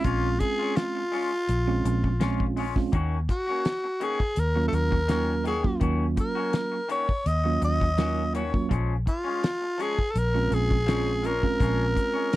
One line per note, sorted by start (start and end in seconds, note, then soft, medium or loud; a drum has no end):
0.00 1.02 G#3 medium
0.00 1.02 C4 medium
0.00 1.02 C#4 medium
0.00 1.02 F4 medium
0.04 0.38 A#1 medium
0.04 0.27 G#3 medium
0.04 0.28 C#4 medium
0.04 0.41 F4 loud
0.04 0.28 F4 medium
0.04 kick loud
0.04 closed hi-hat medium
0.39 0.78 G#4 medium
0.39 muted clean electric guitar stroke soft
0.39 kick medium
0.39 closed hi-hat medium
0.59 0.76 C#4 soft
0.59 0.76 F4 soft
0.76 2.57 F4 medium
0.76 muted clean electric guitar stroke soft
0.76 snare loud
0.76 closed hi-hat medium
0.95 muted clean electric guitar stroke soft
1.12 1.31 G#3 medium
1.12 1.31 C#4 medium
1.12 1.30 F4 medium
1.12 open hi-hat medium
1.31 muted clean electric guitar stroke soft
1.49 1.83 A#1 loud
1.49 closed hi-hat medium
1.67 2.10 G#3 medium
1.67 2.10 C4 medium
1.67 2.10 C#4 medium
1.67 2.10 F4 medium
1.67 muted clean electric guitar stroke soft
1.85 2.89 A#1 medium
1.85 muted clean electric guitar stroke soft
1.85 closed hi-hat medium
2.04 muted clean electric guitar stroke soft
2.04 kick medium
2.20 2.43 G#3 medium
2.20 2.64 G#3 medium
2.20 2.64 C4 medium
2.20 2.64 C#4 medium
2.20 2.44 C#4 medium
2.20 2.64 F4 medium
2.20 2.44 F4 medium
2.20 snare loud
2.20 closed hi-hat medium
2.40 kick medium
2.57 2.76 G#3 medium
2.57 2.76 C#4 medium
2.57 2.75 F4 medium
2.57 open hi-hat medium
2.75 2.93 G#3 medium
2.75 2.93 C4 medium
2.75 2.93 C#4 medium
2.75 2.93 F4 loud
2.75 muted clean electric guitar stroke soft
2.75 kick medium
2.75 snare soft
2.92 3.27 D#2 medium
2.92 3.15 D#3 medium
2.92 3.16 A#3 medium
2.92 3.16 C#4 medium
2.92 3.16 F#4 medium
2.92 kick loud
2.92 closed hi-hat medium
3.29 4.05 F#4 medium
3.29 muted clean electric guitar stroke soft
3.29 kick medium
3.29 closed hi-hat medium
3.47 3.64 A#3 soft
3.47 3.65 C#4 soft
3.47 3.65 F#4 soft
3.65 muted clean electric guitar stroke soft
3.65 snare loud
3.65 closed hi-hat medium
3.84 muted clean electric guitar stroke soft
4.00 4.20 D#3 medium
4.00 4.20 A#3 medium
4.00 4.19 C#4 medium
4.00 4.18 F#4 medium
4.00 4.41 G#4 medium
4.00 closed hi-hat medium
4.19 muted clean electric guitar stroke soft
4.19 kick medium
4.36 4.71 D#2 loud
4.36 4.67 A#4 medium
4.36 closed hi-hat medium
4.55 4.99 F#3 medium
4.55 4.99 A#3 medium
4.55 4.99 C#4 medium
4.55 4.99 F4 medium
4.55 muted clean electric guitar stroke soft
4.68 4.76 A4 medium
4.73 5.77 D#2 medium
4.73 5.46 A#4 loud
4.73 muted clean electric guitar stroke soft
4.73 closed hi-hat medium
4.91 muted clean electric guitar stroke soft
4.91 kick medium
5.08 5.31 D#3 medium
5.08 5.53 F#3 medium
5.08 5.32 A#3 medium
5.08 5.53 A#3 medium
5.08 5.32 C#4 medium
5.08 5.53 C#4 medium
5.08 5.53 F4 medium
5.08 5.33 F#4 medium
5.08 snare loud
5.08 closed hi-hat medium
5.44 5.64 D#3 medium
5.44 5.64 A#3 medium
5.44 5.63 C#4 medium
5.44 5.62 F#4 medium
5.44 5.80 G#4 medium
5.44 closed hi-hat medium
5.63 6.79 F#3 medium
5.63 6.79 A#3 medium
5.63 6.79 C#4 medium
5.63 6.79 F4 medium
5.63 muted clean electric guitar stroke soft
5.63 kick medium
5.80 6.15 D#2 medium
5.80 6.03 D#3 medium
5.80 6.04 A#3 medium
5.80 6.04 C#4 medium
5.80 6.05 F#4 medium
5.80 kick medium
5.80 closed hi-hat medium
6.17 6.87 A#4 medium
6.17 muted clean electric guitar stroke soft
6.17 kick medium
6.17 closed hi-hat medium
6.35 6.53 A#3 soft
6.35 6.53 C#4 soft
6.35 6.53 F#4 medium
6.53 muted clean electric guitar stroke soft
6.53 snare loud
6.53 closed hi-hat medium
6.72 muted clean electric guitar stroke soft
6.89 7.08 D#3 medium
6.89 7.08 A#3 medium
6.89 7.08 C#4 medium
6.89 7.07 F#4 medium
6.89 7.29 C#5 medium
6.89 closed hi-hat medium
7.08 muted clean electric guitar stroke soft
7.08 kick medium
7.26 7.60 D#2 loud
7.26 7.63 D#5 loud
7.26 closed hi-hat medium
7.44 7.88 F#3 medium
7.44 7.88 A#3 medium
7.44 7.88 C#4 medium
7.44 7.88 F4 medium
7.44 muted clean electric guitar stroke soft
7.61 8.67 D#2 medium
7.61 8.32 D#5 loud
7.61 muted clean electric guitar stroke soft
7.61 closed hi-hat medium
7.80 muted clean electric guitar stroke soft
7.80 kick medium
7.98 8.21 D#3 medium
7.98 8.42 F#3 medium
7.98 8.42 A#3 medium
7.98 8.21 A#3 medium
7.98 8.42 C#4 medium
7.98 8.21 C#4 medium
7.98 8.42 F4 medium
7.98 8.22 F#4 medium
7.98 snare loud
7.98 closed hi-hat medium
8.33 8.53 D#3 medium
8.33 8.53 A#3 medium
8.33 8.52 C#4 medium
8.33 8.51 F#4 medium
8.33 8.69 C#5 medium
8.33 closed hi-hat medium
8.53 8.71 F#3 medium
8.53 8.71 A#3 medium
8.53 8.71 C#4 medium
8.53 8.71 F4 medium
8.53 muted clean electric guitar stroke soft
8.53 kick medium
8.69 9.05 A#1 medium
8.69 8.92 F3 medium
8.69 8.93 G#3 medium
8.69 8.94 C#4 medium
8.69 kick loud
8.69 closed hi-hat medium
9.06 9.84 F4 medium
9.06 muted clean electric guitar stroke soft
9.06 kick medium
9.06 closed hi-hat medium
9.24 9.42 G#3 soft
9.24 9.42 C#4 soft
9.42 muted clean electric guitar stroke soft
9.42 snare loud
9.42 closed hi-hat medium
9.62 muted clean electric guitar stroke soft
9.78 9.98 F3 medium
9.78 9.97 G#3 medium
9.78 9.96 C#4 medium
9.78 closed hi-hat medium
9.82 10.12 G#4 loud
9.97 muted clean electric guitar stroke soft
9.97 kick medium
10.11 10.19 A4 medium
10.15 10.49 A#1 loud
10.15 10.55 A#4 medium
10.15 closed hi-hat medium
10.34 10.77 G#3 medium
10.34 10.77 C4 medium
10.34 10.77 C#4 medium
10.34 10.77 F4 medium
10.34 muted clean electric guitar stroke soft
10.51 11.56 A#1 medium
10.51 11.27 G#4 loud
10.51 muted clean electric guitar stroke soft
10.51 closed hi-hat medium
10.70 muted clean electric guitar stroke soft
10.70 kick medium
10.86 11.09 F3 medium
10.86 11.31 G#3 medium
10.86 11.10 G#3 medium
10.86 11.31 C4 medium
10.86 11.31 C#4 medium
10.86 11.11 C#4 medium
10.86 11.31 F4 medium
10.86 snare loud
10.86 closed hi-hat medium
11.23 11.42 F3 medium
11.23 11.43 G#3 medium
11.23 11.41 C#4 medium
11.23 12.36 A#4 medium
11.23 closed hi-hat medium
11.43 12.36 G#3 medium
11.43 12.36 C4 medium
11.43 12.36 C#4 medium
11.43 12.36 F4 medium
11.43 muted clean electric guitar stroke soft
11.43 kick medium
11.60 11.94 A#1 medium
11.60 11.82 F3 medium
11.60 11.83 G#3 medium
11.60 11.83 C#4 medium
11.60 kick loud
11.60 closed hi-hat medium
11.95 muted clean electric guitar stroke soft
11.95 kick medium
11.95 closed hi-hat medium
12.13 12.31 G#3 soft
12.13 12.31 C#4 medium
12.32 12.36 A#4 medium
12.32 muted clean electric guitar stroke soft
12.32 closed hi-hat medium